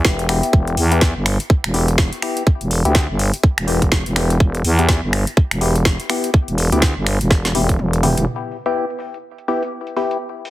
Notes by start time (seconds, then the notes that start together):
0.05 E1 B3 E4 G4, kick, snare
0.19 closed hi-hat
0.29 B3 E4 G4, finger snap, open hi-hat
0.43 closed hi-hat
0.53 E1, kick
0.67 closed hi-hat
0.77 E2, open hi-hat
0.92 B3 E4 G4, closed hi-hat
1.01 kick, snare
1.16 G1
1.26 finger snap, open hi-hat
1.40 closed hi-hat
1.50 kick
1.64 E1, finger snap, closed hi-hat
1.74 B3 E4 G4, open hi-hat
1.88 closed hi-hat
1.98 kick, snare
2.13 closed hi-hat
2.22 B3 E4 G4, finger snap, open hi-hat
2.37 closed hi-hat
2.47 kick
2.61 E1, closed hi-hat
2.71 open hi-hat
2.85 D2 B3 E4 G4, closed hi-hat
2.95 kick, snare
3.09 G1
3.19 open hi-hat
3.34 closed hi-hat
3.43 kick
3.58 E1, finger snap, closed hi-hat
3.68 B3 E4 G4, open hi-hat
3.82 kick, closed hi-hat
3.92 kick, snare
4.06 E1, closed hi-hat
4.16 B3 E4 G4, finger snap, open hi-hat
4.30 closed hi-hat
4.40 E1, kick
4.55 closed hi-hat
4.64 E2, open hi-hat
4.79 B3 E4 G4, closed hi-hat
4.89 kick, snare
5.03 G1
5.13 finger snap, open hi-hat
5.27 closed hi-hat
5.37 kick
5.51 E1, finger snap, closed hi-hat
5.61 B3 E4 G4, open hi-hat
5.76 closed hi-hat
5.85 kick, snare
6.00 closed hi-hat
6.10 B3 E4 G4, finger snap, open hi-hat
6.24 closed hi-hat
6.34 kick
6.48 E1, closed hi-hat
6.58 open hi-hat
6.72 D2 B3 E4 G4, closed hi-hat
6.82 kick, snare
6.96 G1
7.07 finger snap, open hi-hat
7.21 E1, closed hi-hat
7.31 kick, snare
7.45 snare, closed hi-hat
7.55 E1 B3 E4 G4, open hi-hat, high tom
7.69 kick, closed hi-hat, mid tom
7.79 E1, mid tom
7.93 closed hi-hat
8.03 B3 E4 G4, mid tom, open hi-hat
8.17 E1, closed hi-hat, mid tom
8.51 open hi-hat
8.66 B3 E4 G4, closed hi-hat
8.90 closed hi-hat
9.00 open hi-hat
9.14 closed hi-hat
9.38 closed hi-hat
9.48 B3 E4 G4, open hi-hat
9.63 closed hi-hat
9.87 closed hi-hat
9.97 B3 E4 G4, open hi-hat
10.11 closed hi-hat
10.45 open hi-hat